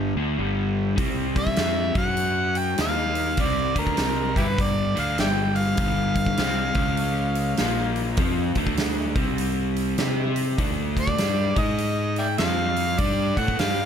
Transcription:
Already playing: G1 G2 D3 G3
0.16 D2 D3 A3 D4
0.38 G1 G2 D3 G3
0.96 C2 C3 G3 C4, kick, open hi-hat
1.36 E5, kick, open hi-hat
1.47 kick
1.56 F2 F3 C4 F4, snare, open hi-hat
1.95 F#2 F#3 C#4 F#4 F#5, kick, open hi-hat
2.17 open hi-hat
2.55 G5, open hi-hat
2.78 D#2 D#3 A#3 D#4 F5, snare, open hi-hat
3.15 open hi-hat
3.37 C2 C3 G3 C4, kick, open hi-hat
3.41 D5
3.75 D2 D3 A3 D4 A#4, kick, open hi-hat
3.87 kick
3.97 C2 C3 G3 C4, snare, open hi-hat
4.35 G1 G2 D3 G3 E4 G4 B4, kick, open hi-hat
4.58 D5, kick, open hi-hat
4.95 D2 D3 A3 D4, open hi-hat
5.01 F5
5.18 G1 G2 D3 G3 D5 E5 G5, snare, open hi-hat
5.56 F5, open hi-hat
5.77 G1 G2 D3 G3, kick, open hi-hat
6.15 kick, open hi-hat
6.26 kick
6.37 C2 C3 G3 C4, snare, open hi-hat
6.74 C#2 C#3 G#3 C#4, kick, open hi-hat
6.97 open hi-hat
7.35 open hi-hat
7.57 A#1 A#2 F3 A#3, snare, open hi-hat
7.96 open hi-hat
8.17 F2 F3 C4 F4, kick, open hi-hat
8.55 D2 D3 A3 D4, kick, open hi-hat
8.67 kick
8.77 snare, open hi-hat
9.15 C2 C3 G3 C4, kick, open hi-hat
9.38 open hi-hat
9.76 open hi-hat
9.98 C3 C4 G4 C5, snare, open hi-hat
10.36 open hi-hat
10.58 D2 D3 A3 D4, kick, open hi-hat
10.97 D5, kick, open hi-hat
11.07 kick
11.18 G2 G3 D4 G4, snare, open hi-hat
11.56 G#2 G#3 D#4 G#4 D#5, kick, open hi-hat
11.78 open hi-hat
12.16 D5 E5 G5, open hi-hat
12.38 F2 F3 C4 F4 F5, snare, open hi-hat
12.76 open hi-hat
12.98 G2 G3 D4 G4 D5, kick, open hi-hat
13.37 A2 A3 E4 A4 F#5, kick, open hi-hat
13.48 kick
13.59 G2 G3 D4 G4 F5, snare, open hi-hat

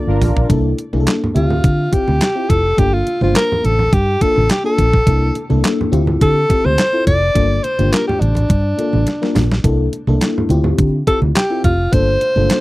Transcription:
Already playing: A#3 D5
0.07 G1 D4 F4 A#4
0.21 A1, floor tom, open hi-hat, muted conga, low conga
0.36 A#1, floor tom
0.49 C2 A#3 D4 E4 A4, kick, closed hi-hat, muted conga
0.78 closed hi-hat, muted conga
0.93 C2 A#3 D4 E4 G#4, high conga
1.00 A4
1.06 snare, clap, closed hi-hat, muted conga
1.24 low conga
1.34 D2 C4 F4 G4 E5, closed hi-hat, muted conga, high conga
1.50 low conga
1.64 D3, kick, closed hi-hat
1.92 C4 E4 F4 G4, kick, closed hi-hat
2.08 D2, high conga
2.21 snare, clap, closed hi-hat, muted conga
2.35 C4 E4 F4 G4
2.49 F1 A4, kick, closed hi-hat, muted conga
2.77 G1 A#3 D4 F4 G4 A4, kick, closed hi-hat, muted conga
2.94 F4
3.07 closed hi-hat, muted conga
3.21 G1 A3 D4 F4 C5, high conga
3.27 A#3
3.35 A#4, snare, clap, closed hi-hat
3.52 low conga
3.64 A1 A4, closed hi-hat, high conga
3.79 low conga
3.93 G2 G4, kick, closed hi-hat
4.21 A#3 D4 F4 A4, kick, closed hi-hat
4.36 A1, high conga
4.49 G4, snare, clap, closed hi-hat, muted conga
4.64 A#3 D4 F4 A4
4.78 A#1, kick, closed hi-hat, muted conga
4.93 kick
5.06 C2 A#3 D4 E4 A4, kick, closed hi-hat
5.35 closed hi-hat, muted conga
5.50 C2 A#3 D4 E4 A4, high conga
5.64 snare, clap, closed hi-hat, muted conga
5.81 low conga
5.92 D2 C4 E4 F4 G4, closed hi-hat, muted conga, high conga
6.07 low conga
6.21 D3 A4, kick, closed hi-hat, muted conga
6.49 C4 E4 F4 G4, kick, closed hi-hat, muted conga
6.65 D2 C5, high conga
6.78 snare, clap, closed hi-hat, muted conga
6.93 C4 E4 F4 A4
7.07 F1 D5, kick, closed hi-hat, muted conga
7.35 G1 A#3 D4 F4 A4, kick, closed hi-hat, muted conga
7.64 C5, closed hi-hat, muted conga
7.79 G1 A#3 D4 F4 G4, closed hi-hat, high conga
7.92 A#4, snare, clap, closed hi-hat, muted conga
8.07 G4, low conga
8.21 A1 D4, closed hi-hat, high conga
8.35 closed hi-hat, low conga
8.49 G2, kick, closed hi-hat, muted conga
8.77 A#3 D4 F4 A4, closed hi-hat, muted conga
8.93 A1, high conga
9.06 snare, closed hi-hat, muted conga
9.21 A#3 D4 F4 A#4, snare
9.35 A#1, snare, open hi-hat, low conga
9.52 snare
9.63 C2 A#3 D4 E4 A4, kick, closed hi-hat, muted conga
9.93 closed hi-hat, muted conga
10.07 C2 A#3 D4 E4 A4, high conga
10.21 snare, clap, closed hi-hat, muted conga
10.38 low conga
10.49 D2 C4 E4 F4 G4, closed hi-hat, muted conga, high conga
10.64 low conga
10.78 D3, kick, closed hi-hat
11.07 C4 E4 F4 G4 A4, kick, closed hi-hat
11.22 D2, high conga
11.35 G4, snare, clap, closed hi-hat
11.50 C4 E4 F4 G4
11.64 F1 F4, kick, closed hi-hat, muted conga
11.93 G1 A#3 D4 F4 A4 C5, kick, closed hi-hat, muted conga
12.21 closed hi-hat, muted conga
12.36 G1 A#3 D4 F4 A4, high conga
12.50 snare, clap, closed hi-hat, muted conga

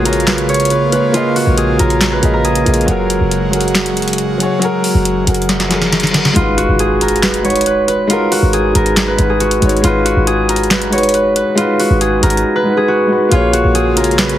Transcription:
Already playing: A#1 C#3 G#3 A#3 F4 F#4 G#4 B4 C#5
0.03 A#3 F4 G#4 A#4, closed hi-hat
0.09 C#5
0.13 closed hi-hat
0.20 closed hi-hat
0.27 B4, snare, clap, closed hi-hat
0.38 closed hi-hat
0.49 C#5, closed hi-hat
0.54 closed hi-hat
0.60 closed hi-hat
0.65 closed hi-hat
0.70 B4, closed hi-hat
0.90 A#3 F4 G#4 B4, closed hi-hat
0.95 C#5
1.11 A#3 F4 G#4, closed hi-hat
1.17 D#5
1.36 F#4, open hi-hat
1.47 A#1
1.58 G#4, closed hi-hat
1.77 A#1 A#3 F4 G#4 A#4, closed hi-hat
1.82 C#5
1.90 closed hi-hat
2.01 snare, clap, closed hi-hat
2.12 B4
2.20 A#1 A#3 F4 G#4, closed hi-hat
2.25 D#5
2.34 A#4
2.44 G#4, closed hi-hat
2.55 closed hi-hat
2.64 A#1 A#3 F4 G#4, closed hi-hat
2.69 D#5
2.74 closed hi-hat
2.81 closed hi-hat
2.86 F#1 F#3 G#3 F#4 G#4, closed hi-hat
2.91 A#4
3.10 closed hi-hat
3.21 F#1
3.31 closed hi-hat
3.51 F#3 F#4 G#4, closed hi-hat
3.56 A#4
3.61 closed hi-hat
3.68 closed hi-hat
3.75 snare, clap, closed hi-hat
3.86 closed hi-hat
3.97 closed hi-hat
4.02 closed hi-hat
4.08 closed hi-hat
4.13 closed hi-hat
4.18 closed hi-hat
4.38 F#3 F#4 G#4, closed hi-hat
4.43 C#5
4.59 F#3 F#4 G#4, closed hi-hat
4.65 A#4
4.84 open hi-hat
4.95 F#1
5.05 closed hi-hat
5.25 F#1 F#3 F#4 G#4, closed hi-hat
5.30 A#4
5.34 closed hi-hat
5.42 closed hi-hat
5.49 snare, closed hi-hat, reverse cymbal
5.60 snare, closed hi-hat
5.69 F#3 F#4 G#4, snare, closed hi-hat
5.74 A#4
5.82 snare
5.92 snare, closed hi-hat
6.00 snare, closed hi-hat
6.07 closed hi-hat
6.12 F#3 F#4 G#4, snare, closed hi-hat
6.17 A#4
6.25 snare
6.33 G#1 G#3 D#4 F4 F#4, closed hi-hat, impact
6.39 B4
6.58 F#4, closed hi-hat
6.69 G#1
6.79 G#4, closed hi-hat
7.01 A#4, closed hi-hat
7.08 closed hi-hat
7.16 closed hi-hat
7.23 B4, snare, clap, closed hi-hat
7.34 closed hi-hat
7.42 G#3 D#4 F#4 C#5, closed hi-hat
7.48 B4, closed hi-hat
7.56 closed hi-hat
7.61 closed hi-hat
7.66 B4, closed hi-hat
7.88 B4, closed hi-hat
8.07 G#3 D#4 F4 F#4, closed hi-hat
8.13 A#4
8.32 F#4, open hi-hat
8.43 G#1
8.53 G#4, closed hi-hat
8.72 G#1 G#3 D#4 F#4 A#4, closed hi-hat
8.78 B4
8.86 closed hi-hat
8.97 snare, clap, closed hi-hat
9.08 B4
9.16 G#1 G#3 D#4 F#4, closed hi-hat
9.21 B4
9.30 G#4
9.40 F#4, closed hi-hat
9.51 closed hi-hat
9.60 G#1 G#3 D#4 F#4, closed hi-hat
9.65 C#5
9.69 closed hi-hat
9.77 closed hi-hat
9.81 G#1 G#3 D#4 F4 F#4, closed hi-hat
9.87 B4
10.05 F#4, closed hi-hat
10.16 G#1
10.27 G#4, closed hi-hat
10.49 A#4, closed hi-hat
10.56 closed hi-hat
10.64 closed hi-hat
10.71 B4, snare, clap, closed hi-hat
10.82 closed hi-hat
10.90 G#3 D#4 F#4 C#5, closed hi-hat
10.95 B4, closed hi-hat
11.03 closed hi-hat
11.09 closed hi-hat
11.14 B4, closed hi-hat
11.36 B4, closed hi-hat
11.55 G#3 D#4 F4 F#4, closed hi-hat
11.61 B4
11.80 F#4, open hi-hat
11.90 G#1
12.01 G#4, closed hi-hat
12.20 G#1 G#3 D#4 F#4 A#4, closed hi-hat
12.26 B4
12.30 closed hi-hat
12.37 closed hi-hat
12.56 B4
12.63 G#3 D#4 F#4
12.69 B4
12.77 G#4
12.88 F#4
13.07 G#3 D#4 F#4
13.12 B4
13.29 A#1 C#3 G#3 A#3 F4 G#4, closed hi-hat
13.34 C#5
13.53 F#4, closed hi-hat
13.64 A#1
13.75 G#4, closed hi-hat
13.95 A#3 F4 G#4 A#4, closed hi-hat
14.00 C#5
14.04 closed hi-hat
14.11 closed hi-hat
14.19 B4, snare, clap, closed hi-hat
14.29 closed hi-hat

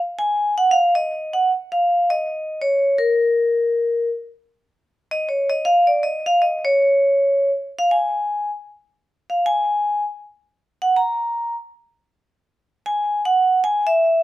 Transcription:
0.19 G#5
0.58 F#5
0.71 F5
0.95 D#5
1.33 F#5
1.72 F5
2.10 D#5
2.62 C#5
2.98 A#4
5.11 D#5
5.29 C#5
5.50 D#5
5.65 F5
5.87 D5
6.03 D#5
6.26 F5
6.42 D#5
6.65 C#5
7.79 F5
7.91 G#5
9.30 F5
9.46 G#5
10.82 F#5
10.96 A#5
12.86 G#5
13.25 F#5
13.64 G#5
13.87 E5

